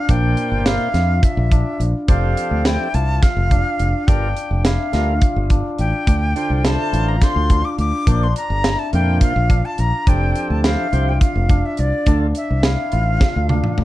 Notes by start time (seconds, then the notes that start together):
Already playing: C4 F4 F5
0.08 A#1 A#2 A#3 D4 C5 G5, kick, closed hi-hat
0.37 closed hi-hat
0.52 G1
0.66 E4 F5, snare, closed hi-hat
0.94 F2 F4, snare, closed hi-hat
1.23 E5, kick, closed hi-hat
1.37 A#1
1.52 D4, kick, closed hi-hat
1.80 A#1, closed hi-hat
2.08 F1 F3 C4 D4 G4 A4 F5, kick, closed hi-hat
2.37 closed hi-hat
2.51 D2
2.65 E4 G5, snare, closed hi-hat
2.94 C2 F4 A5, closed hi-hat
3.22 F5, kick, snare, closed hi-hat
3.37 F1
3.51 D4, kick, closed hi-hat
3.80 F1, closed hi-hat
4.07 G1 G3 D4 F4 A#4 G5, kick, closed hi-hat
4.37 closed hi-hat
4.51 F1
4.65 E4 F5, snare, closed hi-hat
4.93 D2 G3 D4 F4 A#4, snare, closed hi-hat
5.21 kick, closed hi-hat
5.36 G1
5.50 D4, kick, closed hi-hat
5.78 A1 G5, closed hi-hat
6.07 D2 D4, kick, closed hi-hat, shaker
6.36 D3 D4 F4 C5, closed hi-hat
6.50 C2
6.64 E4 A5, snare, closed hi-hat
6.93 A1 F4, closed hi-hat
7.08 A#5
7.21 D3 D4 F4 C5 C6, kick, snare, closed hi-hat, shaker
7.36 D2
7.50 D4, kick, closed hi-hat, shaker
7.65 D6
7.78 D2 D6, closed hi-hat, shaker
8.07 A#1 A#2 A#3 D4 C5, kick, closed hi-hat, shaker
8.23 C6
8.36 A#5, closed hi-hat
8.50 G1
8.64 E4, snare, closed hi-hat
8.79 A5
8.93 F2 A#2 A#3 D4 F4 C5 G5, closed hi-hat
9.21 F5, kick, closed hi-hat, shaker
9.36 A#1
9.49 D4, kick, closed hi-hat, shaker
9.65 A5
9.78 A#1 A#5, closed hi-hat, shaker
10.07 F1 F3 C4 D4 G4 A4 G5, kick, closed hi-hat, shaker
10.35 closed hi-hat
10.50 D2 A5
10.64 E4 F5, snare, closed hi-hat
10.92 C2 F3 C4 F4 G4 C5, closed hi-hat
11.09 G5
11.21 F5, kick, closed hi-hat, shaker
11.35 F1
11.49 D4, kick, closed hi-hat, shaker
11.66 E5
11.77 C2 D5, closed hi-hat, shaker
12.06 D2 D3 D4 F4 A4, kick, closed hi-hat, shaker
12.35 E5, closed hi-hat
12.51 C2
12.63 E4 F5, snare, closed hi-hat
12.92 A1 F4, closed hi-hat
13.21 kick, snare, shaker
13.36 D2
13.49 D4, high tom, shaker
13.64 mid tom
13.78 D2, mid tom